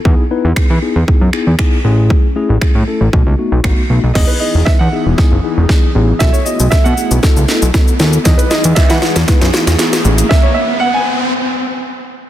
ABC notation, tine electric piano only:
X:1
M:4/4
L:1/8
Q:1/4=117
K:E
V:1 name="Tine electric piano"
[B,DEG] [B,DEB] [B,DEG] [B,DEG] [B,DEG] [B,DEG] [B,DEG] [A,CEG]- | [A,CEG] [A,CEG] [A,CEG] [A,CEA] [A,B,DF] [A,B,DF] [A,B,DF] [A,B,DF] | [B,DEG] [B,DEG] [B,DEB] [B,DEG] [B,DEG] [B,DEG] [B,DEG] [B,DEG] | [B,EFA] [B,EFG] [B,EFA] [B,EFG] [B,EFA] [B,EFA] [B,EFA] [B,EFA] |
[B,DEG] [B,DEG] [B,DEB] [B,DEB] [B,DEB] [B,DEF] [B,DEG] [A,CEG] | z8 |]